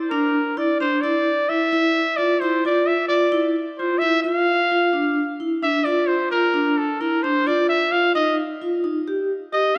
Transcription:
0.10 0.34 D4 medium
0.10 0.59 A#4 medium
0.57 0.69 E4 medium
0.57 0.80 D5 medium
0.80 0.92 D4 medium
0.80 1.03 C5 medium
1.01 1.26 E4 medium
1.01 1.50 D5 medium
1.49 1.61 E4 medium
1.49 2.18 E5 loud
1.72 1.95 E4 medium
2.16 2.30 F4 medium
2.16 2.41 D5 medium
2.40 2.53 E4 medium
2.40 2.63 C5 medium
2.65 2.88 F4 medium
2.65 2.88 D5 medium
2.87 3.08 E5 loud
3.08 3.21 F4 medium
3.08 3.48 D5 medium
3.32 3.55 E4 medium
3.78 3.91 F4 medium
3.78 4.00 C5 medium
3.98 4.13 E4 medium
3.98 4.22 E5 loud
4.23 4.47 F4 medium
4.23 5.34 F5 loud
4.71 4.83 F4 medium
4.93 5.16 D4 medium
5.40 5.51 E4 medium
5.63 5.74 D4 medium
5.63 5.86 E5 loud
5.84 6.09 F4 medium
5.84 6.09 D5 medium
6.07 6.30 C5 medium
6.31 6.43 F4 medium
6.31 6.79 A#4 medium
6.54 6.77 D4 medium
6.78 7.02 A4 medium
7.00 7.12 E4 medium
7.00 7.24 A#4 medium
7.23 7.36 D4 medium
7.23 7.48 C5 medium
7.46 7.70 F4 medium
7.46 7.68 D5 loud
7.69 7.93 E5 loud
7.91 8.04 F4 medium
7.91 8.15 F5 loud
8.15 8.38 D#4 medium
8.15 8.36 D#5 medium
8.62 8.73 F4 medium
8.84 8.96 D#4 medium
9.08 9.31 G4 medium
9.53 9.64 G4 medium
9.53 9.77 D#5 loud

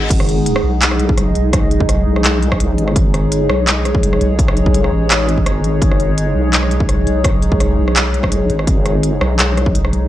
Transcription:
0.00 10.08 G#3 medium
0.00 10.08 D#4 medium
0.00 10.08 G#4 medium
0.00 0.65 F#5 medium
0.00 reverse cymbal medium
0.10 0.62 G#1 loud
0.10 kick loud
0.10 closed hi-hat medium
0.10 crash medium
0.20 cross-stick medium
0.29 closed hi-hat soft
0.46 closed hi-hat medium
0.56 cross-stick medium
0.63 1.34 B1 loud
0.63 2.43 D#5 medium
0.82 clap loud
0.82 closed hi-hat medium
0.91 cross-stick medium
1.00 closed hi-hat soft
1.09 kick loud
1.18 cross-stick medium
1.18 closed hi-hat medium
1.35 2.05 B1 medium
1.35 closed hi-hat soft
1.53 kick loud
1.53 cross-stick medium
1.53 closed hi-hat medium
1.71 closed hi-hat soft
1.80 kick loud
1.89 cross-stick medium
1.89 closed hi-hat medium
2.07 2.77 B1 loud
2.16 cross-stick medium
2.25 clap loud
2.25 closed hi-hat medium
2.31 10.08 C#5 medium
2.42 closed hi-hat soft
2.52 kick medium
2.52 cross-stick medium
2.60 closed hi-hat medium
2.78 2.95 G#1 loud
2.78 closed hi-hat soft
2.88 cross-stick medium
2.96 3.33 G#1 loud
2.96 kick loud
2.96 closed hi-hat medium
3.14 cross-stick medium
3.14 closed hi-hat soft
3.32 3.48 G1 loud
3.32 closed hi-hat medium
3.49 4.20 B1 loud
3.49 cross-stick medium
3.67 clap loud
3.67 closed hi-hat medium
3.85 cross-stick medium
3.85 closed hi-hat soft
3.95 kick loud
4.03 closed hi-hat medium
4.13 cross-stick medium
4.21 4.91 B1 medium
4.21 closed hi-hat soft
4.39 kick loud
4.39 closed hi-hat medium
4.48 cross-stick medium
4.57 closed hi-hat soft
4.66 kick loud
4.74 closed hi-hat medium
4.84 cross-stick medium
4.92 5.45 A1 loud
5.10 cross-stick medium
5.10 clap loud
5.10 closed hi-hat medium
5.29 closed hi-hat soft
5.38 kick medium
5.46 5.80 G#1 loud
5.46 cross-stick medium
5.46 closed hi-hat medium
5.64 closed hi-hat soft
5.82 6.19 G#1 loud
5.82 kick loud
5.82 closed hi-hat medium
5.91 cross-stick medium
6.00 closed hi-hat soft
6.18 6.34 G1 loud
6.18 closed hi-hat medium
6.35 7.05 B1 medium
6.53 clap loud
6.53 closed hi-hat medium
6.63 cross-stick medium
6.71 closed hi-hat soft
6.80 kick loud
6.89 cross-stick soft
6.89 closed hi-hat medium
7.06 7.77 B1 loud
7.06 closed hi-hat soft
7.24 kick loud
7.24 cross-stick medium
7.24 closed hi-hat medium
7.42 closed hi-hat soft
7.52 kick loud
7.60 cross-stick medium
7.60 closed hi-hat medium
7.78 8.48 B1 loud
7.88 cross-stick medium
7.96 clap loud
7.96 closed hi-hat medium
8.14 closed hi-hat soft
8.23 kick medium
8.23 cross-stick medium
8.32 closed hi-hat medium
8.50 8.66 G#1 medium
8.50 closed hi-hat soft
8.59 cross-stick medium
8.67 9.04 G#1 loud
8.67 kick loud
8.67 closed hi-hat medium
8.86 cross-stick medium
8.86 closed hi-hat soft
9.03 9.20 G1 loud
9.03 closed hi-hat medium
9.21 9.91 B1 loud
9.21 cross-stick medium
9.39 clap loud
9.39 closed hi-hat medium
9.57 cross-stick medium
9.57 closed hi-hat soft
9.66 kick loud
9.75 closed hi-hat medium
9.85 cross-stick medium
9.93 10.08 B1 medium
9.93 closed hi-hat soft

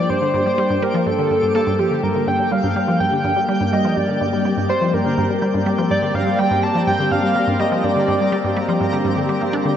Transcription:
0.00 9.77 G3 medium
0.00 9.77 A#3 medium
0.00 4.39 D4 medium
0.00 2.02 G4 medium
0.00 0.11 D5 loud
0.00 2.67 G5 medium
0.00 1.77 A5 medium
0.00 2.06 D6 medium
0.10 0.14 G2 medium
0.10 0.84 C5 loud
0.22 0.33 D3 medium
0.34 0.42 G2 medium
0.46 0.54 G3 medium
0.58 0.70 G3 loud
0.70 0.78 G2 loud
0.82 0.87 G3 loud
0.82 1.08 A#4 medium
0.94 1.06 F3 loud
1.06 1.11 G2 medium
1.06 1.54 A4 loud
1.19 1.30 D3 medium
1.31 1.39 G2 medium
1.43 1.51 G2 medium
1.55 1.60 A#3 loud
1.55 1.81 A4 loud
1.63 9.77 G4 medium
1.67 1.75 G2 loud
1.79 1.87 F3 medium
1.79 2.05 G4 medium
1.91 1.96 D3 medium
2.03 2.08 G2 medium
2.03 9.77 G4 medium
2.03 2.29 A#4 loud
2.03 5.93 G5 medium
2.15 2.27 D3 medium
2.28 2.35 G2 loud
2.28 2.53 G5 loud
2.40 2.47 G3 medium
2.52 2.63 G3 loud
2.52 3.00 F5 loud
2.64 2.72 G2 loud
2.64 9.77 D5 medium
2.76 2.81 G3 loud
2.88 3.00 F3 loud
3.00 3.05 G2 medium
3.00 3.74 G5 loud
3.12 3.24 D3 medium
3.24 3.32 G2 loud
3.36 3.44 G3 medium
3.49 3.60 G3 loud
3.61 3.68 G2 loud
3.73 3.77 G3 loud
3.73 3.98 D#5 loud
3.85 3.96 F3 loud
3.97 4.02 G2 medium
3.97 4.45 D5 loud
4.09 4.21 D3 medium
4.21 4.29 G2 loud
4.21 9.77 C4 medium
4.33 4.41 G3 medium
4.45 4.57 G3 loud
4.57 4.65 G2 medium
4.69 4.74 G3 loud
4.69 4.95 C5 loud
4.81 4.93 F3 loud
4.94 4.98 G2 medium
4.94 5.66 A#4 loud
5.06 5.17 D3 medium
5.18 5.26 G2 loud
5.30 5.38 G3 medium
5.42 5.54 G3 loud
5.54 5.62 G2 loud
5.66 5.71 G3 loud
5.78 5.90 F3 loud
5.90 5.95 G2 medium
5.90 6.16 D5 loud
5.90 9.77 A#5 medium
6.02 6.14 D3 medium
6.15 6.22 G2 loud
6.15 6.40 F5 loud
6.27 6.35 G3 medium
6.39 6.50 G3 loud
6.39 6.65 G5 loud
6.51 6.59 G2 loud
6.63 6.68 G3 loud
6.63 6.87 A5 loud
6.75 6.87 F3 loud
6.87 6.92 G2 medium
6.87 7.13 G5 loud
6.99 7.11 D3 medium
7.11 7.19 G2 loud
7.11 7.61 F5 loud
7.23 7.31 G3 medium
7.36 7.47 G3 medium
7.48 7.55 G2 loud
7.60 7.64 G3 loud
7.60 7.86 D#5 medium
7.72 7.83 F3 loud
7.84 7.89 G2 medium
7.84 8.81 D5 loud
7.96 8.08 D3 medium
8.08 8.16 G2 loud
8.20 8.28 G3 medium
8.32 8.44 G3 loud
8.44 8.52 G2 loud
8.57 8.61 G3 loud
8.69 8.80 F3 loud
8.81 8.85 G2 medium
8.93 9.04 D3 medium
9.05 9.13 G2 medium
9.17 9.29 D3 medium
9.29 9.37 G3 loud
9.41 9.49 A#3 medium
9.53 9.61 D4 loud
9.65 9.73 D3 medium

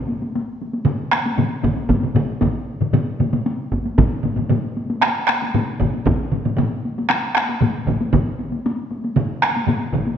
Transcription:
0.08 taiko high soft
0.22 taiko high soft
0.35 taiko high medium
0.61 taiko high soft
0.74 taiko high medium
0.85 taiko low-mid medium
0.85 taiko mid loud
0.85 taiko high medium
1.11 taiko rim medium
1.11 taiko high soft
1.26 taiko high medium
1.38 taiko low-mid medium
1.38 taiko mid medium
1.38 taiko high medium
1.63 taiko medium
1.63 taiko low-mid medium
1.63 taiko mid loud
1.63 taiko high medium
1.76 taiko high medium
1.89 taiko medium
1.89 taiko low-mid medium
1.89 taiko mid medium
1.89 taiko high medium
2.02 taiko low-mid medium
2.02 taiko mid medium
2.15 taiko low-mid medium
2.15 taiko mid loud
2.15 taiko high medium
2.41 taiko medium
2.41 taiko low-mid loud
2.41 taiko mid medium
2.41 taiko high medium
2.81 taiko low-mid medium
2.81 taiko mid medium
2.93 taiko low-mid medium
2.93 taiko mid loud
2.93 taiko high medium
3.20 taiko low-mid medium
3.20 taiko mid medium
3.20 taiko high medium
3.33 taiko low-mid medium
3.33 taiko mid medium
3.33 taiko high medium
3.46 taiko high medium
3.72 taiko medium
3.72 taiko high medium
3.86 taiko high medium
3.98 taiko medium
3.98 taiko low-mid medium
3.98 taiko mid loud
3.98 taiko high medium
4.23 taiko low-mid medium
4.23 taiko mid medium
4.23 taiko high medium
4.36 taiko low-mid medium
4.36 taiko mid medium
4.36 taiko high medium
4.49 taiko low-mid loud
4.49 taiko mid medium
4.49 taiko high medium
4.77 taiko high soft
4.90 taiko high medium
5.01 taiko rim medium
5.01 taiko high medium
5.27 taiko rim medium
5.27 taiko high soft
5.42 taiko high medium
5.54 taiko low-mid loud
5.54 taiko mid medium
5.54 taiko high medium
5.80 taiko medium
5.80 taiko low-mid loud
5.80 taiko mid loud
5.80 taiko high soft
5.93 taiko high soft
6.06 taiko loud
6.06 taiko low-mid medium
6.06 taiko mid loud
6.06 taiko high medium
6.32 taiko low-mid medium
6.32 taiko mid medium
6.32 taiko high soft
6.45 taiko low-mid medium
6.45 taiko mid medium
6.45 taiko high soft
6.57 taiko low-mid loud
6.57 taiko mid loud
6.57 taiko high medium
6.85 taiko high soft
6.98 taiko high medium
7.09 taiko rim medium
7.09 taiko high medium
7.35 taiko rim medium
7.35 taiko high medium
7.37 taiko rim medium
7.49 taiko high soft
7.61 taiko low-mid medium
7.61 taiko mid medium
7.61 taiko high medium
7.87 taiko medium
7.87 taiko low-mid loud
7.87 taiko mid medium
7.87 taiko high medium
8.01 taiko high medium
8.13 taiko medium
8.13 taiko low-mid medium
8.13 taiko mid loud
8.13 taiko high medium
8.39 taiko high medium
8.52 taiko high medium
8.66 taiko high medium
8.91 taiko high soft
9.04 taiko high medium
9.16 taiko low-mid medium
9.16 taiko mid medium
9.16 taiko high medium
9.42 taiko rim medium
9.42 taiko high medium
9.56 taiko high medium
9.67 taiko low-mid medium
9.67 taiko mid medium
9.67 taiko high medium
9.93 taiko medium
9.93 taiko low-mid medium
9.93 taiko mid medium
9.93 taiko high medium
10.07 taiko high medium

